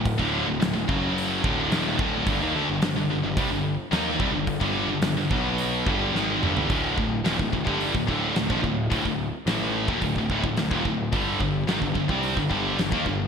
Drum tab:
HH |o---o---o---o---|o---o---o---o---|o---o---o-------|o---o---o---o---|
SD |----o-------o---|----o-------o---|----o-------o---|----o-------o---|
T2 |----------------|----------------|--------------o-|----------------|
FT |----------------|----------------|---------------o|----------------|
BD |oo----o---o---o-|o-------o-----o-|oo----o---o-----|o-o--ooo-oo--oo-|

HH |o---o---o---o---|o---o---o---o---|
SD |----o-------o---|----o-------o---|
T2 |----------------|----------------|
FT |----------------|----------------|
BD |oo-----ooooo-oo-|o-o--ooo-oo--oo-|